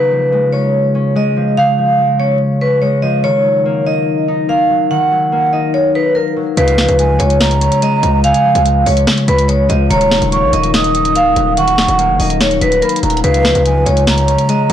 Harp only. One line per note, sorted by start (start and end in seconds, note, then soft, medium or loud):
0.00 1.56 C#3 loud
0.00 2.70 A#3 medium
0.00 1.99 D#4 medium
0.11 1.35 F3 medium
0.32 1.14 G#3 medium
0.53 0.94 C#4 medium
0.95 2.19 C#4 medium
1.15 1.98 G#3 medium
1.36 1.62 F3 medium
1.57 3.29 C#3 medium
1.78 3.02 F3 medium
1.99 2.81 G#3 medium
2.20 2.61 C#4 medium
2.61 5.51 C#4 medium
2.82 3.29 G#3 medium
3.03 3.29 F3 medium
3.24 4.89 D#3 medium
3.45 4.68 F#3 medium
3.65 4.48 A#3 medium
3.86 4.28 D#4 medium
4.28 5.53 D#4 medium
4.48 5.32 A#3 medium
4.70 4.96 F#3 medium
4.90 6.62 D#3 medium
5.11 6.35 F#3 medium
5.32 6.15 A#3 medium
5.53 5.94 D#4 medium
5.95 8.65 D#4 medium
6.16 9.37 A#3 medium
6.36 6.62 F#3 medium
6.57 8.23 C#3 loud
6.78 8.02 F3 medium
6.99 7.81 G#3 medium
7.20 7.61 C#4 medium
7.61 8.86 C#4 medium
7.82 8.64 G#3 loud
8.03 8.29 F3 medium
8.24 9.96 C#3 medium
8.45 9.69 F3 medium
8.65 9.48 G#3 medium
8.86 9.28 C#4 medium
9.28 12.18 C#4 medium
9.49 9.96 G#3 medium
9.70 9.96 F3 medium
9.90 11.56 D#3 loud
10.11 11.35 F#3 medium
10.32 11.15 A#3 loud
10.53 10.94 D#4 medium
10.95 12.19 D#4 medium
11.15 11.98 A#3 medium
11.36 11.62 F#3 medium
11.57 13.29 D#3 medium
11.78 13.02 F#3 medium
11.99 12.82 A#3 loud
12.20 12.61 D#4 medium
12.61 14.73 D#4 medium
12.82 14.73 A#3 medium
13.03 13.29 F#3 medium
13.24 14.73 C#3 loud
13.45 14.69 F3 medium
13.65 14.48 G#3 medium
13.86 14.28 C#4 medium
14.28 14.73 C#4 medium
14.49 14.73 G#3 loud